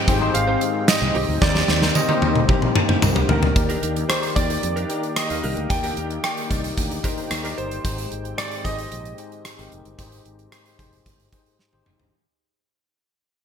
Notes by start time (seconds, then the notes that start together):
Already playing: G#2 D#3 G#3 C4 D#4 G4 G#4 C5 G5
0.07 G#1 C4 D#4 G4 G#4 C5, kick, closed hi-hat
0.21 C4 D#4 G4 G#4 C5, muted clean electric guitar stroke
0.34 G#1 F5, muted clean electric guitar stroke, closed hi-hat
0.48 D#4 G4 C5
0.61 muted clean electric guitar stroke, closed hi-hat
0.74 muted clean electric guitar stroke
0.88 D#5, muted clean electric guitar stroke, snare, closed hi-hat, tambourine
1.01 C2, muted clean electric guitar stroke
1.15 C2 D#4 G4 C5, open hi-hat
1.28 D2, muted clean electric guitar stroke
1.41 D#2 D#3 A#3 C4 D#4 G4 A#4 C5 D5, muted clean electric guitar stroke, kick, snare
1.55 D#4 G4 C5, snare
1.68 D#2 D#4 G4 C5, snare
1.81 C4 D#4 G4 A#4 C5, muted clean electric guitar stroke, snare
1.95 D#5, muted clean electric guitar stroke, high tom, tambourine
2.08 C4 D#4 G4 A#4 C5, high tom
2.22 D#2 D#4 G4 C5, high tom
2.35 muted clean electric guitar stroke, mid tom
2.48 A#1 D#4 G4 C5, kick, mid tom
2.62 muted clean electric guitar stroke, mid tom
2.75 muted clean electric guitar stroke, mid tom
2.89 D#4 G4 C5, mid tom
3.02 C2, muted clean electric guitar stroke, mid tom, tambourine
3.15 D#4 G4 C5, floor tom
3.29 D2 D#4 G4 A#4 C5, floor tom
3.42 muted clean electric guitar stroke, floor tom
3.55 D#2 D#3 A#3 D#4 G4 A#4 D5 G5, muted clean electric guitar stroke, kick, closed hi-hat
3.69 D4 G4 A#4, closed hi-hat
3.82 D#2 D4 G4 A#4, closed hi-hat
3.96 muted clean electric guitar stroke, closed hi-hat
4.09 D#4 G4 A#4 C5 D5, muted clean electric guitar stroke, cross-stick, closed hi-hat
4.23 muted clean electric guitar stroke, closed hi-hat
4.36 D#2 D#4 G4 A#4 D5, kick, closed hi-hat
4.50 muted clean electric guitar stroke, closed hi-hat
4.63 F2, muted clean electric guitar stroke, closed hi-hat
4.76 D4 G4 A#4, closed hi-hat
4.89 D4 D#4 G4 A#4 D5, closed hi-hat
5.03 muted clean electric guitar stroke, closed hi-hat
5.16 D#5, cross-stick, closed hi-hat
5.29 D#2 D#4 G4 A#4 F5, muted clean electric guitar stroke, closed hi-hat
5.43 C2 D4 G4 A#4, open hi-hat
5.56 D2, muted clean electric guitar stroke, closed hi-hat
5.70 D#2 D#3 D#4 G4 A#4 D5 G5, muted clean electric guitar stroke, kick, closed hi-hat
5.83 D4 G4 A#4, closed hi-hat
5.97 D#2 D4 G4 A#4, closed hi-hat
6.10 muted clean electric guitar stroke, closed hi-hat
6.23 D#4 G4 A#4 D5 G5, muted clean electric guitar stroke, cross-stick, closed hi-hat
6.37 muted clean electric guitar stroke, closed hi-hat
6.50 C2 D#4 G4 A#4 D5, kick, closed hi-hat
6.64 muted clean electric guitar stroke, closed hi-hat
6.77 D2, muted clean electric guitar stroke, kick, closed hi-hat
6.91 muted clean electric guitar stroke, closed hi-hat
7.03 D4 D#4 G4 A#4 C5, kick, closed hi-hat
7.17 muted clean electric guitar stroke, closed hi-hat
7.31 D#2, muted clean electric guitar stroke, cross-stick, closed hi-hat
7.43 D4 D#4 G4 A#4 D5, closed hi-hat
7.58 G1 C5, muted clean electric guitar stroke, closed hi-hat
7.71 muted clean electric guitar stroke, closed hi-hat
7.84 G#1 G#2 G#3 C4 D#4 G4 G#4 C5, kick, closed hi-hat
7.98 closed hi-hat
8.12 G#1, closed hi-hat
8.25 closed hi-hat
8.37 D#4 G4 G#4 C5 D5, cross-stick, closed hi-hat
8.52 closed hi-hat
8.64 G#1 D#4 G4 G#4 C5 D#5, kick, closed hi-hat
8.78 closed hi-hat
8.92 A#1, closed hi-hat
9.05 closed hi-hat
9.18 D#4 G4 G#4 C5, closed hi-hat
9.32 closed hi-hat
9.45 cross-stick, closed hi-hat
9.58 G#1 D#4 G4 G#4 A#4, closed hi-hat
9.72 F1, closed hi-hat
9.85 G1, closed hi-hat
9.98 G#1 G#2 D#4 G4 G#4 C5, kick, closed hi-hat
10.12 closed hi-hat
10.25 G#1, closed hi-hat
10.39 closed hi-hat
10.52 D#4 G4 G#4 C5, cross-stick, closed hi-hat
10.66 closed hi-hat
10.79 F1 D#4 G4 G#4 C5, kick, closed hi-hat
10.93 closed hi-hat
11.06 G1, kick, closed hi-hat
11.20 closed hi-hat
11.32 D#4 G4 G#4 C5, kick, closed hi-hat
11.46 closed hi-hat
11.59 snare
11.73 G#1 D#4 G4 G#4 C5, high tom
11.86 F1, mid tom
12.00 G1, floor tom